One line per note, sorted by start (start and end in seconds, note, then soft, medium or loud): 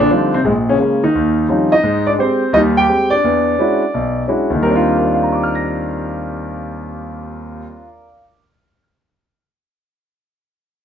0.00 0.31 D3 medium
0.11 0.34 F3 medium
0.11 0.34 G3 soft
0.11 0.33 C4 soft
0.11 0.35 D4 soft
0.11 0.35 D#4 medium
0.34 0.39 C3 medium
0.34 0.39 C4 medium
0.44 0.74 A#1 medium
0.44 0.51 G#2 medium
0.44 0.50 G#3 medium
0.69 0.79 C#3 medium
0.69 0.78 C#4 medium
0.78 1.01 C#3 medium
0.78 1.03 G#3 medium
0.78 1.03 A#3 soft
0.78 1.03 C#4 medium
1.04 1.68 D#3 medium
1.04 1.48 D#4 medium
1.15 1.45 D#2 medium
1.49 1.73 F3 medium
1.49 1.73 G3 soft
1.49 1.73 C4 soft
1.49 1.73 C#4 soft
1.49 1.73 D#4 medium
1.72 2.05 D#4 medium
1.72 2.04 D#5 medium
1.83 2.13 G#2 medium
2.07 2.14 D4 medium
2.07 2.12 D5 medium
2.18 2.42 G#3 medium
2.18 2.21 C4 soft
2.18 2.52 C4 medium
2.18 2.42 G4 medium
2.18 2.51 C5 medium
2.53 2.83 D#2 medium
2.53 2.83 G3 medium
2.53 2.61 D#4 medium
2.53 2.59 D#5 medium
2.77 2.87 G4 medium
2.77 3.12 G5 loud
2.89 3.12 G#3 soft
2.89 3.12 C4 soft
2.89 3.12 G4 medium
3.10 3.58 D4 medium
3.10 4.22 D5 loud
3.24 3.53 E2 medium
3.59 3.82 G#3 medium
3.59 3.82 C#4 soft
3.59 3.82 D4 medium
3.59 3.82 E4 soft
3.59 3.82 F#4 medium
3.94 4.23 B1 medium
4.28 4.51 G#3 medium
4.28 4.51 C#4 soft
4.28 4.51 D4 soft
4.28 4.51 E4 soft
4.28 4.51 F#4 medium
4.50 7.60 D#2 medium
4.55 7.65 D#3 medium
4.60 7.71 G3 medium
4.60 4.97 A#4 medium
4.65 7.76 C4 medium
4.70 7.81 D4 medium
4.75 7.86 F4 medium
4.98 8.05 A#4 soft
5.05 8.11 D5 soft
5.14 8.20 F5 soft
5.23 8.29 A#5 soft
5.32 8.39 D6 soft
5.43 8.50 F6 soft
5.55 8.62 A#6 soft